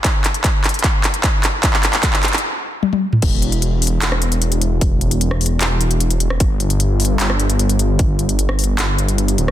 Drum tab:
CC |--------------------------------|--------------------------------|x-------------------------------|--------------------------------|
HH |x---x-x-x---xxxxx---x-x-x---x---|x---x-x-x---xxxx----------------|x---x-x-x---ox--x---x-x-x-x-x---|x---x-x-x---ox--x---x-x-x-x-x---|
CP |x---x---x---x---x---x---x---x---|x-x-x-x-x-x-x-x-----------------|----------------x---------------|----------------x---------------|
SD |--------------------------------|--------------------------------|------------------r-------------|----------r-------------------r-|
T1 |--------------------------------|------------------------o-o-----|--------------------------------|--------------------------------|
T2 |--------------------------------|------------------------------o-|--------------------------------|--------------------------------|
BD |o-------o-------o-------o-------|o-------o-----------------------|o-------------------------------|o-------------------------------|

CC |--------------------------------|--------------------------------|
HH |x---x-x-x---ox--x---x-x-x-x-x---|x---x-x-x---ox--x---x-x-x-x-x---|
CP |----------------x---------------|----------------x---------------|
SD |------------------r-------------|----------r---------------------|
T1 |--------------------------------|--------------------------------|
T2 |--------------------------------|--------------------------------|
BD |o-------------------------------|o-------------------------------|